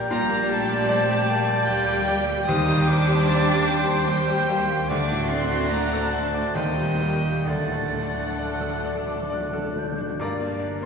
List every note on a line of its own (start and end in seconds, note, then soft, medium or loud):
0.00 0.14 A#3 medium
0.00 0.10 G4 medium
0.00 0.14 G4 medium
0.00 0.13 A#4 medium
0.00 0.14 D5 medium
0.00 0.14 G5 loud
0.00 0.14 D6 medium
0.11 1.64 A#1 medium
0.11 2.43 A#2 loud
0.11 4.73 G3 medium
0.11 1.65 G3 loud
0.11 0.48 A#3 medium
0.11 0.92 D4 medium
0.11 4.73 G4 loud
0.11 1.65 G4 medium
0.11 1.67 G4 loud
0.11 2.44 D5 loud
0.11 1.65 D5 medium
0.11 0.48 A#5 loud
0.11 0.52 A#5 loud
0.11 2.44 G6 loud
0.30 0.61 A#3 medium
0.50 0.81 G3 medium
0.50 1.66 A3 loud
0.50 1.67 A5 loud
0.50 1.65 A5 loud
0.70 1.01 G4 medium
0.89 1.31 C4 loud
0.89 1.20 D5 loud
1.09 1.40 G4 medium
1.28 2.48 A#3 loud
1.28 1.60 G5 medium
1.48 1.79 D6 medium
1.67 2.48 D2 medium
1.67 2.46 G3 loud
1.67 2.48 G3 loud
1.67 2.46 G4 loud
1.67 2.46 G4 medium
1.67 2.47 D5 medium
1.67 1.99 G5 loud
1.67 2.49 G5 loud
1.67 2.48 G5 loud
1.88 2.20 G4 medium
2.08 2.40 D5 medium
2.29 2.48 G4 medium
2.47 4.86 D#2 loud
2.47 4.05 G3 loud
2.47 4.05 C4 medium
2.47 2.88 D#4 loud
2.47 4.04 G4 medium
2.47 4.05 G4 medium
2.47 4.85 C5 medium
2.47 4.05 C5 medium
2.47 2.89 D#6 loud
2.47 2.87 D#6 loud
2.47 3.30 G6 medium
2.69 3.00 D#3 medium
2.87 3.20 G3 medium
2.87 4.08 D4 loud
2.87 4.08 D6 loud
2.87 4.06 D6 loud
3.08 3.39 G4 medium
3.28 3.60 C5 medium
3.28 3.69 A6 loud
3.48 3.80 G4 medium
3.68 4.00 G5 medium
3.68 4.61 G6 medium
3.87 4.20 C6 medium
4.07 4.88 G3 loud
4.07 4.90 G3 loud
4.07 4.51 C4 medium
4.07 4.88 G4 loud
4.07 4.88 G4 medium
4.07 4.88 C5 medium
4.07 4.91 G5 loud
4.07 4.90 G5 loud
4.07 4.41 G5 medium
4.30 4.62 G4 medium
4.49 4.92 A#3 medium
4.49 4.83 C5 medium
4.70 4.90 G4 medium
4.88 6.53 D2 medium
4.88 6.53 D2 loud
4.88 6.52 A3 medium
4.88 6.52 A3 loud
4.88 5.71 A3 medium
4.88 6.52 D4 loud
4.88 5.29 D4 loud
4.88 6.52 F#4 medium
4.88 6.53 F#4 medium
4.88 6.57 D5 medium
4.88 5.67 D5 medium
4.88 5.32 D6 loud
4.88 5.29 D6 loud
4.88 6.58 F#6 loud
5.12 5.43 A2 medium
5.29 5.64 A3 medium
5.29 5.71 C4 loud
5.29 5.70 C6 loud
5.29 5.72 C6 loud
5.51 5.84 F#4 medium
5.70 6.12 A#3 medium
5.70 6.59 D4 medium
5.70 6.55 C5 medium
5.70 6.05 D5 medium
5.70 6.14 A#5 medium
5.70 6.13 A#5 loud
5.93 6.26 A4 medium
6.11 6.56 A3 medium
6.11 6.48 F#5 medium
6.11 6.56 A5 loud
6.11 6.57 A5 medium
6.34 6.56 D6 medium
6.55 7.44 D#2 medium
6.55 7.47 D#2 medium
6.55 7.47 G3 medium
6.55 7.47 A#3 medium
6.55 7.03 C4 medium
6.55 7.47 D#4 medium
6.55 7.47 G4 medium
6.55 7.47 A#4 medium
6.55 7.47 D#5 medium
6.55 7.47 G5 medium
6.55 7.15 G5 medium
6.55 7.49 G6 medium
6.78 7.15 A#2 medium
7.01 7.38 G3 medium
7.01 7.47 A#3 medium
7.24 7.47 G4 medium
7.46 10.16 D2 medium
7.46 10.00 D2 medium
7.46 9.96 D3 medium
7.46 9.78 F#3 medium
7.46 9.82 A3 medium
7.46 9.96 D4 medium
7.46 9.86 A4 medium
7.46 10.00 A4 medium
7.46 9.86 D5 medium
7.46 9.95 D5 medium
7.46 9.77 F#5 medium
7.46 9.74 F#5 medium
7.46 8.30 A6 medium
7.56 7.63 D3 soft
7.65 8.06 A2 medium
7.65 7.71 D3 soft
7.81 7.89 D3 soft
7.90 7.98 D3 soft
7.90 8.29 A3 medium
7.99 8.07 D3 soft
8.08 8.16 D3 medium
8.15 8.24 D3 medium
8.15 8.53 D4 medium
8.25 8.33 D3 medium
8.34 8.42 D3 medium
8.39 8.76 D5 medium
8.39 8.87 F#6 medium
8.43 8.50 D3 medium
8.51 8.59 D3 medium
8.60 8.68 D3 medium
8.60 8.99 A4 medium
8.69 8.77 D3 medium
8.79 8.86 D3 medium
8.84 8.95 D3 medium
8.84 9.22 D5 medium
8.84 9.35 D6 medium
8.96 9.04 D3 medium
9.05 9.13 D3 medium
9.05 9.45 D6 medium
9.14 9.21 D3 medium
9.23 9.31 D3 medium
9.30 9.39 D3 medium
9.30 9.68 D5 medium
9.30 9.80 F#6 medium
9.41 9.48 D3 medium
9.49 9.57 D3 medium
9.49 9.91 A4 medium
9.58 9.65 D3 medium
9.67 9.74 D3 medium
9.75 9.83 D3 medium
9.75 10.12 D5 medium
9.75 10.21 G6 medium
9.84 9.91 D3 medium
9.92 10.00 D3 loud
9.98 10.07 D3 loud
9.98 10.20 D4 medium
10.08 10.16 D3 loud
10.20 10.86 G1 medium
10.20 10.86 G2 medium
10.20 10.86 A#3 medium
10.20 10.51 A#3 medium
10.20 10.86 D4 medium
10.20 10.86 G4 medium
10.20 10.86 A#4 medium
10.20 10.50 D5 medium
10.20 10.78 D5 medium
10.20 10.84 D5 medium
10.20 10.79 D5 medium
10.20 10.78 A#5 medium
10.20 10.78 D6 medium
10.40 10.73 A#3 medium
10.60 10.86 D4 medium
10.81 10.86 A#3 medium
10.81 10.86 C5 medium